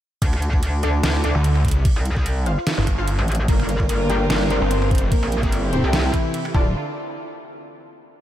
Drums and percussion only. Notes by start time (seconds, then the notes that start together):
0.22 kick, closed hi-hat, crash
0.33 finger snap
0.42 closed hi-hat
0.53 kick
0.63 closed hi-hat, crash
0.83 closed hi-hat
1.03 snare, closed hi-hat, crash
1.24 closed hi-hat
1.44 closed hi-hat, crash
1.55 finger snap
1.65 kick, closed hi-hat
1.68 closed hi-hat
1.71 closed hi-hat
1.85 kick, closed hi-hat, crash
2.05 closed hi-hat
2.17 kick
2.26 closed hi-hat, crash
2.46 closed hi-hat
2.67 snare, closed hi-hat, crash
2.87 finger snap, kick, closed hi-hat
3.08 closed hi-hat, crash
3.19 finger snap
3.28 closed hi-hat
3.32 closed hi-hat
3.35 closed hi-hat
3.48 kick, closed hi-hat, crash
3.60 finger snap
3.69 closed hi-hat
3.80 kick
3.89 closed hi-hat, crash
4.10 closed hi-hat
4.30 snare, closed hi-hat, crash
4.50 closed hi-hat
4.71 closed hi-hat, crash
4.82 finger snap
4.91 kick, closed hi-hat
4.95 closed hi-hat
4.98 closed hi-hat
5.12 kick, closed hi-hat, crash
5.23 finger snap
5.32 closed hi-hat
5.43 kick, closed hi-hat
5.52 closed hi-hat, crash
5.73 closed hi-hat
5.93 snare, closed hi-hat, crash
6.14 finger snap, kick, closed hi-hat
6.34 closed hi-hat, crash
6.45 finger snap
6.55 kick